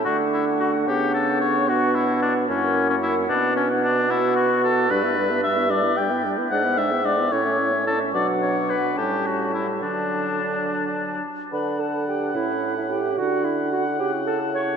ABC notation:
X:1
M:6/8
L:1/16
Q:3/8=73
K:D
V:1 name="Flute"
f12 | f6 f6- | f6 f6 | d e d e d e d e d e d e |
d e d e d e c e c e c e | f6 a6 | a8- a2 z2 | b2 a2 g2 e3 e g2 |
f2 e2 f2 g2 a2 c'2 |]
V:2 name="Oboe"
F2 E2 F2 G2 A2 c2 | F2 E2 D2 C3 C E2 | D2 C2 D2 E2 F2 A2 | B4 e2 d2 g3 z |
f2 e2 d2 c4 A2 | d2 c2 B2 G2 F2 E2 | D8- D2 z2 | f12 |
f12 |]
V:3 name="Clarinet"
D12- | D6 E6 | D6 F6 | D E D E D E D E D E D E |
D E D E D E E C E C E C | D6 C6 | D8- D2 z2 | B2 A2 G2 E3 E G2 |
F2 E2 F2 G2 A2 c2 |]
V:4 name="French horn"
A,6 B,6- | B,6 ^A,6 | B,6 B,6 | G, B, G, B, G, B, G, B, G, B, G, B, |
^G, B, G, B, G, B, C A, C A, C A, | F,6 G,6 | F,8- F,2 z2 | D6 C6 |
D6 E6 |]
V:5 name="Bassoon" clef=bass
D,6 C,6 | B,,6 F,,6 | B,,12 | G,,12 |
^G,,6 A,,6 | B,,6 A,,6 | D,8- D,2 z2 | D,6 A,,6 |
D,6 C,6 |]